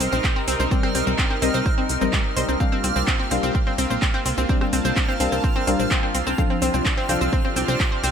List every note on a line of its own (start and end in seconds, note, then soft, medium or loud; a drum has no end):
0.00 0.08 C2 medium
0.00 2.56 C3 medium
0.00 0.68 G3 medium
0.00 0.68 C4 medium
0.00 2.57 C4 medium
0.00 0.06 C4 medium
0.00 2.56 D#4 medium
0.00 0.69 A#4 medium
0.00 2.56 A#4 medium
0.00 0.06 C5 medium
0.00 0.68 D#5 loud
0.00 8.11 F6 medium
0.00 open hi-hat loud
0.00 shaker medium
0.12 0.20 A#1 medium
0.12 0.18 C4 loud
0.12 0.18 C5 medium
0.12 low conga medium
0.12 shaker soft
0.24 0.27 C4 medium
0.24 0.27 C5 medium
0.24 kick loud
0.24 clap loud
0.24 shaker soft
0.36 0.41 C4 medium
0.36 0.41 C5 medium
0.48 0.56 C2 medium
0.48 0.53 C4 loud
0.48 0.53 C5 medium
0.48 open hi-hat loud
0.48 shaker medium
0.60 0.67 C2 medium
0.60 0.63 C4 medium
0.60 0.63 C5 medium
0.60 high conga medium
0.60 low conga medium
0.60 shaker soft
0.71 1.39 G3 medium
0.71 1.39 C4 medium
0.71 0.77 C4 medium
0.71 1.39 A#4 medium
0.71 0.77 C5 medium
0.71 1.39 D5 medium
0.71 kick loud
0.71 shaker soft
0.83 0.89 C4 loud
0.83 0.89 C5 medium
0.83 cross-stick medium
0.95 1.03 C2 medium
0.95 0.98 C4 medium
0.95 0.98 C5 medium
0.95 open hi-hat loud
0.95 shaker medium
1.07 1.15 C2 medium
1.07 1.12 C4 medium
1.07 1.12 C5 medium
1.07 low conga loud
1.07 shaker soft
1.18 1.24 C4 loud
1.18 1.24 C5 medium
1.18 kick loud
1.18 clap loud
1.18 high conga medium
1.18 shaker soft
1.30 1.34 C4 medium
1.30 1.34 C5 medium
1.42 1.50 C2 medium
1.42 1.87 G3 medium
1.42 1.48 C4 medium
1.42 1.87 C4 medium
1.42 1.87 A#4 medium
1.42 1.48 C5 medium
1.42 1.87 D#5 loud
1.42 open hi-hat loud
1.42 shaker medium
1.54 1.62 C2 medium
1.54 1.59 C4 loud
1.54 1.59 C5 medium
1.54 shaker soft
1.66 1.69 C4 medium
1.66 1.69 C5 medium
1.66 kick loud
1.66 shaker soft
1.78 1.83 C4 medium
1.78 1.83 C5 medium
1.78 high conga medium
1.89 1.97 C2 loud
1.89 open hi-hat loud
1.89 shaker medium
2.01 2.09 A#1 medium
2.01 2.34 G3 medium
2.01 2.07 C4 medium
2.01 2.34 C4 medium
2.01 2.34 A#4 medium
2.01 2.07 C5 medium
2.01 2.34 D#5 loud
2.01 low conga medium
2.01 shaker soft
2.13 2.18 G3 loud
2.13 2.18 G4 medium
2.13 kick loud
2.13 clap loud
2.13 shaker soft
2.37 2.45 C2 medium
2.37 2.57 G3 medium
2.37 2.57 C4 medium
2.37 2.57 A#4 medium
2.37 2.40 C5 loud
2.37 2.57 D#5 medium
2.37 2.40 C6 medium
2.37 open hi-hat loud
2.37 shaker medium
2.49 2.56 C2 medium
2.49 2.54 C4 medium
2.49 2.54 C5 medium
2.49 high conga medium
2.49 shaker soft
2.60 3.28 G3 loud
2.60 6.34 A#3 medium
2.60 2.66 C4 medium
2.60 3.28 D4 medium
2.60 8.11 F4 medium
2.60 4.47 G4 medium
2.60 3.28 A#4 medium
2.60 2.66 C5 medium
2.60 3.28 F5 loud
2.60 kick loud
2.60 shaker soft
2.72 2.80 C4 loud
2.72 2.80 C5 medium
2.84 2.92 C2 loud
2.84 2.87 C4 medium
2.84 2.87 C5 medium
2.84 open hi-hat loud
2.84 shaker medium
2.96 3.04 C2 medium
2.96 3.01 C4 medium
2.96 3.01 C5 medium
2.96 low conga medium
2.96 shaker soft
3.07 3.16 C4 loud
3.07 3.16 C5 medium
3.07 kick loud
3.07 clap loud
3.07 high conga medium
3.07 shaker soft
3.20 3.23 C4 medium
3.20 3.23 C5 medium
3.31 3.39 C2 medium
3.31 4.46 G3 medium
3.31 3.37 C4 medium
3.31 4.46 D4 medium
3.31 4.46 A#4 medium
3.31 3.37 C5 medium
3.31 4.46 F5 loud
3.31 open hi-hat loud
3.31 shaker medium
3.43 3.51 C2 medium
3.43 3.51 C4 loud
3.43 3.51 C5 medium
3.43 shaker soft
3.55 3.58 C4 medium
3.55 3.58 C5 medium
3.55 kick loud
3.55 shaker soft
3.67 3.72 C4 medium
3.67 3.72 C5 medium
3.67 high conga medium
3.78 3.86 C2 loud
3.78 3.87 C4 loud
3.78 3.87 C5 medium
3.78 open hi-hat loud
3.78 shaker medium
3.90 3.98 A#1 medium
3.90 3.94 C4 medium
3.90 3.94 C5 medium
3.90 low conga medium
3.90 shaker soft
4.02 4.07 C4 medium
4.02 4.07 C5 medium
4.02 kick loud
4.02 clap loud
4.02 shaker soft
4.14 4.22 C4 loud
4.14 4.22 C5 medium
4.26 4.34 C2 medium
4.26 4.29 C4 medium
4.26 4.29 C5 medium
4.26 open hi-hat loud
4.26 shaker medium
4.38 4.45 C2 medium
4.38 4.43 C4 medium
4.38 4.43 C5 medium
4.38 high conga medium
4.38 low conga medium
4.38 shaker soft
4.49 5.17 G3 medium
4.49 4.57 C4 loud
4.49 5.17 D4 medium
4.49 5.17 A#4 medium
4.49 4.57 C5 medium
4.49 5.17 D5 medium
4.49 6.36 A5 medium
4.49 kick loud
4.49 shaker soft
4.61 4.64 C4 medium
4.61 4.64 C5 medium
4.61 cross-stick medium
4.73 4.81 C2 loud
4.73 4.78 C4 medium
4.73 4.78 C5 medium
4.73 open hi-hat loud
4.73 shaker medium
4.85 4.93 C2 medium
4.85 4.93 C4 loud
4.85 4.93 C5 medium
4.85 low conga medium
4.85 shaker soft
4.96 5.00 C4 medium
4.96 5.00 C5 medium
4.96 kick loud
4.96 clap loud
4.96 high conga medium
4.96 shaker soft
5.08 5.14 C4 medium
5.08 5.14 C5 medium
5.20 5.28 C2 loud
5.20 5.65 G3 loud
5.20 5.28 C4 loud
5.20 5.65 D4 medium
5.20 5.65 A#4 medium
5.20 5.28 C5 medium
5.20 5.65 F5 loud
5.20 open hi-hat loud
5.20 shaker medium
5.32 5.40 C2 medium
5.32 5.35 C4 medium
5.32 5.35 C5 medium
5.32 shaker soft
5.44 5.49 C4 medium
5.44 5.49 C5 medium
5.44 kick loud
5.44 shaker soft
5.56 5.64 C4 loud
5.56 5.64 C5 medium
5.56 high conga medium
5.67 5.75 C2 loud
5.67 6.35 G3 medium
5.67 5.71 C4 medium
5.67 6.35 D4 medium
5.67 6.35 A#4 medium
5.67 5.71 C5 medium
5.67 6.35 F5 loud
5.67 open hi-hat loud
5.67 shaker medium
5.79 5.87 A#1 medium
5.79 5.85 C4 medium
5.79 5.85 C5 medium
5.79 low conga medium
5.79 shaker soft
5.91 5.99 C4 loud
5.91 5.99 C5 medium
5.91 kick loud
5.91 clap loud
5.91 shaker soft
6.03 6.06 C4 medium
6.03 6.06 C5 medium
6.15 6.23 C2 medium
6.15 6.20 C4 medium
6.15 6.20 C5 medium
6.15 open hi-hat loud
6.15 shaker medium
6.27 6.34 C2 medium
6.27 6.35 C4 loud
6.27 6.35 C5 medium
6.27 high conga medium
6.27 shaker soft
6.38 8.11 C3 medium
6.38 7.06 F3 loud
6.38 8.11 C4 medium
6.38 6.42 C4 medium
6.38 8.11 D4 medium
6.38 7.06 D4 medium
6.38 7.06 A4 medium
6.38 6.42 C5 medium
6.38 7.06 F5 loud
6.38 kick loud
6.38 shaker soft
6.50 6.56 C4 medium
6.50 6.55 C5 medium
6.62 6.70 C2 medium
6.62 6.70 C4 loud
6.62 6.70 C5 medium
6.62 open hi-hat loud
6.62 shaker medium
6.74 6.82 C2 medium
6.74 6.77 C4 medium
6.74 6.77 C5 medium
6.74 low conga medium
6.74 shaker soft
6.85 6.91 C4 medium
6.85 6.91 C5 medium
6.85 kick loud
6.85 clap loud
6.85 high conga medium
6.85 shaker soft
6.97 7.05 C4 loud
6.97 7.05 C5 medium
7.09 7.17 C2 medium
7.09 8.11 F3 medium
7.09 7.12 C4 medium
7.09 8.11 D4 medium
7.09 8.11 A4 medium
7.09 7.12 C5 medium
7.09 8.11 F5 loud
7.09 open hi-hat loud
7.09 shaker medium
7.21 7.29 C2 medium
7.21 7.26 C4 medium
7.21 7.26 C5 medium
7.21 shaker soft
7.33 7.41 C4 loud
7.33 7.41 C5 medium
7.33 kick loud
7.33 shaker soft
7.45 7.48 C4 medium
7.45 7.48 C5 medium
7.45 high conga medium
7.56 7.64 C2 loud
7.56 7.62 C4 medium
7.56 7.62 C5 medium
7.56 open hi-hat loud
7.56 shaker medium
7.68 7.76 C2 medium
7.68 7.76 C4 loud
7.68 7.76 C5 medium
7.68 low conga medium
7.68 shaker soft
7.80 7.83 C4 medium
7.80 7.83 C5 medium
7.80 kick loud
7.80 clap loud
7.80 shaker soft
7.92 7.97 C4 medium
7.92 7.97 C5 medium
8.04 8.11 C2 medium
8.04 8.11 C4 loud
8.04 8.11 C5 medium
8.04 open hi-hat loud
8.04 shaker medium